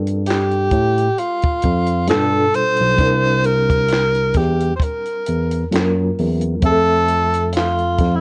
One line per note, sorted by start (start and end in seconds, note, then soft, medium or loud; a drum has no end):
0.00 0.68 G2 medium
0.00 2.03 G3 medium
0.00 2.05 C4 medium
0.00 2.05 F4 soft
0.00 2.06 A4 medium
0.00 2.04 A#4 soft
0.07 closed hi-hat soft
0.26 1.20 G4 medium
0.26 closed hi-hat medium
0.30 snare medium
0.30 clap medium
0.51 closed hi-hat soft
0.71 1.08 A2 medium
0.71 kick medium
0.71 closed hi-hat medium
0.98 closed hi-hat soft
1.18 2.09 F4 medium
1.18 closed hi-hat medium
1.42 kick medium
1.42 closed hi-hat soft
1.62 2.09 F2 medium
1.62 kick medium
1.62 closed hi-hat medium
1.87 closed hi-hat medium
2.07 2.45 G2 medium
2.07 2.96 G3 soft
2.07 2.15 A#3 soft
2.07 2.98 D4 soft
2.07 2.99 F4 soft
2.07 2.57 A4 medium
2.07 3.00 A4 medium
2.07 snare loud
2.07 closed hi-hat medium
2.12 3.02 B2 soft
2.12 clap medium
2.54 3.47 C5 loud
2.54 closed hi-hat medium
2.77 2.96 B1 medium
2.77 closed hi-hat soft
2.97 4.32 C2 loud
2.97 5.67 G3 medium
2.97 5.67 C4 soft
2.97 5.68 D4 medium
2.97 kick loud
2.97 closed hi-hat medium
3.01 5.69 E4 soft
3.01 5.69 A#4 medium
3.44 4.38 A#4 loud
3.44 closed hi-hat medium
3.70 kick medium
3.70 closed hi-hat soft
3.88 closed hi-hat medium
3.93 snare medium
3.93 clap medium
4.14 closed hi-hat soft
4.34 4.71 E2 medium
4.34 4.75 G4 medium
4.34 kick medium
4.34 closed hi-hat medium
4.38 snare soft
4.60 closed hi-hat soft
4.76 4.85 C5 medium
4.76 kick medium
4.81 5.73 A#4 medium
4.81 closed hi-hat medium
5.05 closed hi-hat soft
5.26 5.63 E2 medium
5.26 closed hi-hat medium
5.51 closed hi-hat soft
5.71 6.09 F#2 medium
5.71 6.62 F#3 medium
5.71 6.62 A#3 soft
5.71 6.63 C#4 soft
5.71 6.63 F4 medium
5.71 5.80 A4 soft
5.71 closed hi-hat medium
5.76 snare loud
5.76 clap medium
5.80 6.67 A#4 medium
6.18 6.54 E2 medium
6.18 open hi-hat soft
6.41 closed hi-hat soft
6.60 8.21 F3 medium
6.60 8.21 A3 soft
6.60 8.21 C4 soft
6.60 kick loud
6.60 closed hi-hat medium
6.64 7.96 F2 medium
6.64 6.71 G#4 soft
6.64 7.51 A4 loud
6.64 8.21 E5 soft
6.72 8.21 A4 medium
7.08 closed hi-hat medium
7.34 closed hi-hat medium
7.53 8.17 F4 medium
7.53 closed hi-hat medium
7.57 snare loud
7.57 clap medium
7.78 closed hi-hat soft
7.98 8.21 F2 medium
7.98 kick medium
7.98 closed hi-hat medium
8.03 snare soft
8.16 8.21 E4 medium